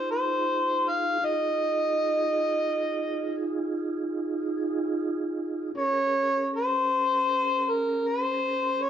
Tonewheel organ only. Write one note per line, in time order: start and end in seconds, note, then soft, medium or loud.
0.00 1.18 D#4 medium
0.00 1.18 F4 medium
0.00 1.18 G#4 medium
1.22 5.72 D#4 medium
1.22 5.72 F4 medium
1.22 5.72 G#4 medium
5.75 8.90 C#4 medium
5.75 8.90 G#4 medium
5.75 8.90 A#4 medium